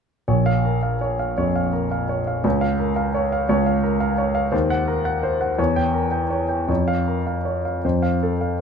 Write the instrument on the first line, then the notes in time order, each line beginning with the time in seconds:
grand piano
0.28 A#1 C#5
0.46 F5
0.65 A#4
0.83 F5
1.01 C#5
1.19 F5
1.38 F2 C#5
1.56 F5
1.73 A#4
1.91 F5
2.09 C#5
2.27 F5
2.44 C#2 C#5
2.61 F5
2.79 A#4
2.96 F5
3.15 C#5
3.32 F5
3.49 C#2 C#5
3.66 F5
3.84 A#4
4.00 F5
4.18 C#5
4.35 F5
4.52 D#2 C5
4.70 F#5
4.88 A#4
5.05 F#5
5.23 C5
5.41 F#5
5.58 E2 C#5
5.76 G5
5.94 A#4
6.12 G5
6.30 C#5
6.49 G5
6.68 F2 C#5
6.88 F5
7.08 A#4
7.27 F5
7.45 C#5
7.65 F5
7.84 F2 C5
8.02 F5
8.23 A4
8.41 F5